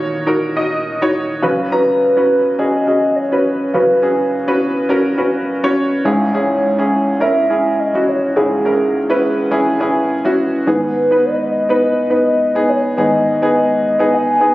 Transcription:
0.00 1.11 D#2 medium
0.00 1.11 A#2 medium
0.00 0.26 D#4 medium
0.00 0.27 F#4 medium
0.00 0.27 A#4 medium
0.00 0.23 C#5 medium
0.00 1.02 C#5 medium
0.26 0.50 D#4 medium
0.26 0.50 F#4 medium
0.26 0.50 A#4 medium
0.56 0.89 D#4 medium
0.56 0.89 F#4 medium
0.56 0.90 D#5 medium
1.02 1.34 D#4 medium
1.02 1.34 F#4 medium
1.02 1.34 C#5 medium
1.43 3.70 F#2 medium
1.43 3.70 C#3 medium
1.43 1.66 C#4 medium
1.43 1.66 F#4 medium
1.43 1.66 B4 medium
1.72 2.05 C#4 medium
1.72 2.05 F#4 medium
1.72 2.61 B4 medium
1.72 2.05 A#5 medium
2.17 2.49 C#4 medium
2.17 2.49 F#4 medium
2.17 2.49 B4 medium
2.59 2.81 C#4 medium
2.59 2.81 F#4 medium
2.59 2.81 G#4 medium
2.59 2.87 D#5 loud
2.87 3.20 C#4 medium
2.87 3.20 F#4 soft
2.87 3.21 G#4 medium
2.87 3.18 D#5 medium
3.16 3.76 C#5 medium
3.32 3.64 C#4 medium
3.32 3.65 F#4 medium
3.32 3.65 B4 medium
3.74 6.01 F#2 soft
3.74 6.01 C#3 medium
3.74 3.97 C#4 medium
3.74 3.97 F#4 medium
3.74 3.97 B4 medium
3.74 4.90 B4 medium
4.02 4.35 C#4 medium
4.02 4.36 F#4 medium
4.02 4.36 G#4 medium
4.48 4.80 C#4 medium
4.48 4.80 F#4 medium
4.48 4.80 B4 medium
4.89 5.12 C#4 medium
4.89 5.12 F#4 medium
4.89 5.12 A#4 medium
5.18 5.51 C#4 medium
5.18 5.51 F#4 medium
5.18 5.51 B4 medium
5.64 5.96 C#4 medium
5.64 5.96 F#4 medium
5.64 5.96 C#5 medium
6.05 8.32 C#2 medium
6.05 8.32 G#2 medium
6.05 6.27 C#4 medium
6.05 6.28 E4 medium
6.05 6.28 G#4 medium
6.33 6.66 C#4 medium
6.33 6.67 E4 medium
6.33 6.67 G#4 medium
6.33 7.23 C#5 medium
6.79 7.11 C#4 medium
6.79 7.11 E4 medium
6.79 7.11 G#4 medium
7.20 7.43 C#4 medium
7.20 7.43 E4 medium
7.20 7.43 A#4 medium
7.20 7.81 E5 loud
7.50 7.82 C#4 medium
7.50 7.82 E4 medium
7.50 7.83 G#4 medium
7.80 8.08 D#5 loud
7.94 8.26 C#4 medium
7.94 8.26 E4 medium
7.94 8.27 F#4 medium
8.09 8.38 C#5 medium
8.36 10.63 C#2 soft
8.36 10.63 G#2 soft
8.36 8.58 C#4 medium
8.36 8.59 E4 medium
8.36 10.09 G#4 medium
8.36 8.59 G#4 medium
8.65 8.98 C#4 medium
8.65 8.98 E4 medium
8.65 8.98 A#4 medium
9.10 9.41 C#4 medium
9.10 9.42 E4 medium
9.10 9.42 B4 medium
9.51 9.73 C#4 medium
9.51 9.74 E4 medium
9.51 9.74 G#4 medium
9.80 10.13 C#4 medium
9.80 10.13 E4 medium
9.80 10.13 G#4 medium
10.25 10.57 C#4 medium
10.25 10.57 E4 medium
10.25 10.57 F#4 medium
10.67 12.93 G#2 medium
10.67 12.94 D#3 medium
10.67 10.99 B3 medium
10.67 11.00 D#4 medium
10.67 11.00 G#4 medium
10.67 11.27 B4 medium
11.11 11.53 B3 medium
11.11 11.53 D#4 medium
11.11 11.53 B4 medium
11.25 11.82 D#5 medium
11.69 12.01 B3 medium
11.69 12.01 D#4 medium
11.69 12.02 B4 medium
11.82 12.71 D#5 medium
12.10 12.43 B3 medium
12.10 12.43 D#4 soft
12.10 12.43 B4 medium
12.55 12.87 B3 medium
12.55 12.88 D#4 medium
12.55 12.88 G#4 medium
12.69 13.00 C#5 medium
12.97 14.54 G#2 medium
12.97 14.54 D#3 medium
12.97 13.30 B3 medium
12.97 13.30 D#4 medium
12.97 13.30 G#4 medium
12.97 13.56 D#5 loud
13.42 13.84 B3 medium
13.42 13.84 D#4 medium
13.42 13.84 G#4 medium
13.56 14.16 D#5 medium
13.99 14.31 B3 medium
13.99 14.31 D#4 medium
13.99 14.32 G#4 medium
14.14 14.54 G#5 medium
14.40 14.54 B3 medium
14.40 14.54 D#4 medium
14.40 14.54 G#4 medium

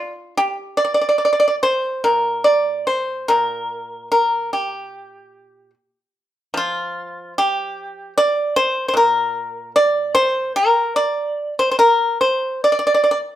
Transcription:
0.00 0.34 F4 medium
0.00 0.12 D5 medium
0.37 0.76 G4 medium
0.77 0.83 D5 medium
0.85 0.93 D5 medium
0.94 1.00 D5 medium
1.01 1.07 D5 medium
1.09 1.16 D5 medium
1.18 1.24 D5 soft
1.25 1.31 D5 medium
1.33 1.38 D5 medium
1.40 1.46 D5 medium
1.48 1.55 D5 medium
1.63 2.02 C5 medium
2.04 3.28 A#2 medium
2.04 2.43 A#4 medium
2.44 2.84 D5 medium
2.87 3.26 C5 medium
3.28 5.74 A#2 medium
3.28 4.07 A#4 medium
4.12 4.50 A#4 medium
4.53 5.70 G4 medium
6.54 8.93 F3 medium
6.54 7.33 F4 medium
7.38 8.13 G4 loud
8.18 8.54 D5 loud
8.56 8.87 C5 loud
8.88 8.95 C5 medium
8.94 11.35 A#2 medium
8.94 9.71 A#4 medium
9.76 10.12 D5 loud
10.15 10.52 C5 loud
10.56 10.93 A#4 loud
10.96 11.53 D5 medium
11.59 11.70 C5 medium
11.71 11.78 C5 medium
11.79 12.17 A#4 medium
12.21 12.60 C5 medium
12.64 12.71 D5 medium
12.72 12.78 D5 medium
12.79 12.86 D5 medium
12.87 12.93 D5 medium
12.94 13.02 D5 medium
13.04 13.10 D5 medium
13.11 13.18 D5 medium

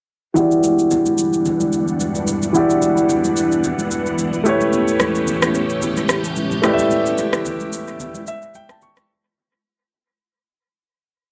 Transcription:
0.34 2.49 E3 medium
0.34 9.05 E3 medium
0.34 4.41 G3 medium
0.34 9.05 B3 medium
0.34 4.41 D4 medium
0.34 2.50 E4 medium
0.34 2.51 F#4 medium
0.34 2.51 G4 medium
0.34 4.41 F#5 medium
0.34 low conga medium
0.34 shaker medium
0.39 2.52 D5 medium
0.51 shaker medium
0.63 high conga medium
0.63 shaker medium
0.79 shaker soft
0.91 low conga medium
0.91 shaker medium
1.06 high conga medium
1.06 shaker medium
1.18 shaker loud
1.33 shaker soft
1.45 low conga medium
1.45 shaker medium
1.60 high conga medium
1.60 shaker soft
1.73 high conga soft
1.73 shaker medium
1.88 shaker medium
2.00 high conga medium
2.00 shaker medium
2.15 high conga medium
2.15 shaker soft
2.27 low conga medium
2.27 shaker medium
2.42 high conga medium
2.42 shaker medium
2.53 4.41 E3 medium
2.53 4.41 E4 medium
2.53 4.42 F#4 medium
2.53 4.43 G4 medium
2.53 low conga medium
2.53 shaker medium
2.58 4.43 D5 medium
2.70 shaker soft
2.82 high conga medium
2.82 shaker medium
2.97 shaker soft
3.09 low conga medium
3.09 shaker medium
3.24 high conga medium
3.24 shaker medium
3.36 shaker medium
3.52 shaker soft
3.64 low conga medium
3.64 shaker medium
3.79 high conga medium
3.79 shaker soft
3.91 high conga medium
3.91 shaker medium
4.06 shaker medium
4.18 high conga medium
4.18 shaker medium
4.33 high conga medium
4.33 shaker soft
4.44 6.59 A3 medium
4.44 9.05 A3 medium
4.44 9.05 C#4 medium
4.44 6.59 E4 medium
4.44 9.05 G4 medium
4.44 6.60 G4 medium
4.44 6.61 B4 medium
4.44 low conga medium
4.44 shaker medium
4.49 6.61 C#5 medium
4.61 high conga medium
4.61 shaker medium
4.72 low conga medium
4.72 shaker medium
4.88 shaker medium
5.00 cross-stick medium
5.00 high conga medium
5.00 shaker medium
5.15 shaker soft
5.27 low conga medium
5.27 shaker medium
5.42 cross-stick loud
5.42 high conga medium
5.42 shaker medium
5.55 shaker medium
5.70 shaker soft
5.82 low conga medium
5.82 shaker medium
5.97 high conga medium
5.97 shaker soft
6.09 cross-stick medium
6.09 high conga soft
6.09 shaker medium
6.24 shaker medium
6.36 high conga medium
6.36 shaker medium
6.51 high conga medium
6.51 shaker soft
6.62 8.77 A3 medium
6.62 8.77 E4 medium
6.62 8.78 G4 medium
6.62 8.79 B4 medium
6.62 cross-stick medium
6.62 low conga medium
6.62 shaker medium
6.67 6.72 D5 medium
6.73 8.26 E5 medium
6.79 high conga medium
6.79 shaker medium
6.90 low conga medium
6.90 shaker medium
7.06 shaker medium
7.18 high conga medium
7.18 shaker medium
7.33 cross-stick medium
7.33 shaker soft
7.45 low conga medium
7.45 shaker medium
7.60 high conga medium
7.60 shaker medium
7.73 shaker loud
7.87 shaker soft
8.00 low conga medium
8.00 shaker medium
8.15 high conga medium
8.15 shaker soft
8.27 8.53 E5 medium
8.27 high conga medium
8.27 shaker medium
8.42 shaker medium
8.54 8.69 G5 medium
8.54 high conga medium
8.54 shaker medium
8.69 8.81 A5 medium
8.69 cross-stick medium
8.69 high conga medium
8.69 shaker soft
8.82 9.08 C#6 medium
8.82 low conga medium
8.82 shaker medium
8.97 cross-stick loud
8.97 high conga medium
8.97 shaker medium

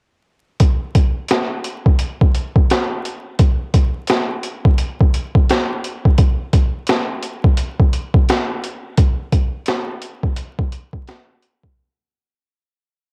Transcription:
0.60 kick loud
0.60 closed hi-hat medium
0.95 kick loud
0.95 closed hi-hat medium
1.28 snare loud
1.28 snare medium
1.28 closed hi-hat medium
1.64 closed hi-hat medium
1.86 kick loud
1.99 closed hi-hat medium
2.21 kick medium
2.35 closed hi-hat medium
2.56 kick loud
2.70 snare loud
2.70 snare medium
2.70 closed hi-hat medium
3.05 closed hi-hat medium
3.39 kick loud
3.39 closed hi-hat medium
3.74 kick loud
3.74 closed hi-hat medium
4.07 snare loud
4.07 snare medium
4.07 closed hi-hat medium
4.43 closed hi-hat medium
4.65 kick loud
4.78 closed hi-hat medium
5.00 kick loud
5.14 closed hi-hat medium
5.35 kick loud
5.49 snare loud
5.49 snare medium
5.49 closed hi-hat medium
5.84 closed hi-hat medium
6.05 kick loud
6.18 kick loud
6.18 closed hi-hat medium
6.53 kick loud
6.53 closed hi-hat medium
6.87 snare loud
6.87 snare medium
6.87 closed hi-hat medium
7.22 closed hi-hat medium
7.44 kick loud
7.57 closed hi-hat medium
7.80 kick medium
7.93 closed hi-hat medium
8.14 kick loud
8.29 snare loud
8.29 snare medium
8.29 closed hi-hat medium
8.63 closed hi-hat medium
8.97 kick loud
8.97 closed hi-hat medium
9.32 kick loud
9.32 closed hi-hat medium
9.66 snare loud
9.66 snare medium
9.66 closed hi-hat medium
10.02 closed hi-hat medium
10.23 kick medium
10.36 closed hi-hat medium
10.59 kick loud
10.72 closed hi-hat medium
10.93 kick loud
11.08 snare loud
11.08 snare medium
11.08 closed hi-hat medium
11.43 closed hi-hat medium
11.64 kick loud

